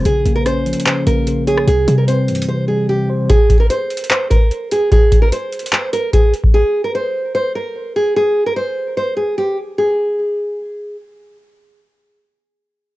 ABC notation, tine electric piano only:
X:1
M:4/4
L:1/8
Q:1/4=148
K:Cphr
V:1 name="Tine electric piano" clef=bass
D, B, D F, D, B, D, d | C, G, C =E, C, G, C, c | z8 | z8 |
z8 | z8 | z8 | z8 |]